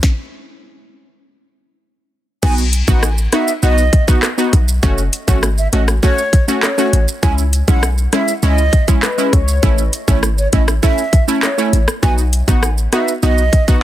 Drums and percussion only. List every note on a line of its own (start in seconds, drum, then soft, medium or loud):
0.03 kick loud
0.03 snare medium
2.43 kick loud
2.43 crash loud
2.43 shaker medium
2.58 shaker medium
2.73 closed hi-hat medium
2.73 shaker medium
2.88 kick loud
2.88 shaker medium
3.03 cross-stick loud
3.03 shaker medium
3.18 shaker soft
3.32 cross-stick medium
3.32 closed hi-hat medium
3.32 shaker soft
3.48 shaker medium
3.63 shaker medium
3.78 shaker medium
3.93 kick loud
3.93 closed hi-hat medium
3.93 shaker medium
4.08 kick loud
4.08 shaker medium
4.23 cross-stick loud
4.23 clap loud
4.23 shaker medium
4.38 shaker medium
4.53 kick medium
4.53 closed hi-hat medium
4.53 shaker medium
4.68 shaker medium
4.83 kick loud
4.83 shaker medium
4.98 shaker medium
5.13 closed hi-hat medium
5.13 shaker medium
5.28 kick medium
5.28 shaker medium
5.43 cross-stick loud
5.43 shaker medium
5.58 shaker soft
5.73 closed hi-hat medium
5.73 shaker soft
5.88 cross-stick loud
5.88 shaker medium
6.03 kick medium
6.03 shaker medium
6.18 shaker medium
6.33 kick loud
6.33 closed hi-hat medium
6.33 shaker medium
6.48 shaker medium
6.63 cross-stick loud
6.63 clap loud
6.63 shaker medium
6.78 shaker medium
6.93 closed hi-hat medium
6.93 shaker medium
7.08 shaker medium
7.23 kick loud
7.23 shaker medium
7.38 shaker medium
7.53 closed hi-hat medium
7.53 shaker medium
7.68 kick loud
7.68 shaker medium
7.83 cross-stick loud
7.83 shaker medium
7.98 shaker soft
8.13 cross-stick medium
8.13 closed hi-hat medium
8.13 shaker medium
8.28 shaker medium
8.43 shaker medium
8.58 shaker medium
8.73 kick loud
8.73 closed hi-hat medium
8.73 shaker medium
8.88 kick medium
8.88 shaker medium
9.03 cross-stick loud
9.03 clap loud
9.03 shaker medium
9.18 shaker medium
9.33 kick medium
9.33 closed hi-hat medium
9.33 shaker medium
9.48 shaker medium
9.63 kick loud
9.63 shaker medium
9.78 shaker medium
9.93 closed hi-hat medium
9.93 shaker medium
10.08 kick medium
10.08 shaker medium
10.23 cross-stick loud
10.23 shaker medium
10.38 shaker soft
10.53 kick medium
10.53 closed hi-hat medium
10.53 shaker medium
10.68 cross-stick loud
10.68 shaker medium
10.83 kick medium
10.83 shaker medium
10.98 shaker medium
11.13 kick loud
11.13 closed hi-hat medium
11.13 shaker medium
11.28 shaker medium
11.43 cross-stick loud
11.43 clap loud
11.43 shaker medium
11.58 shaker medium
11.73 closed hi-hat medium
11.73 shaker medium
11.88 cross-stick loud
11.88 shaker medium
12.03 kick loud
12.03 shaker medium
12.18 shaker medium
12.33 closed hi-hat medium
12.33 shaker medium
12.48 kick loud
12.48 shaker medium
12.63 cross-stick loud
12.63 shaker medium
12.78 shaker soft
12.93 cross-stick medium
12.93 closed hi-hat medium
12.93 shaker soft
13.08 shaker medium
13.23 shaker medium
13.38 shaker medium
13.53 kick loud
13.53 closed hi-hat medium
13.53 shaker medium
13.68 kick medium
13.68 shaker medium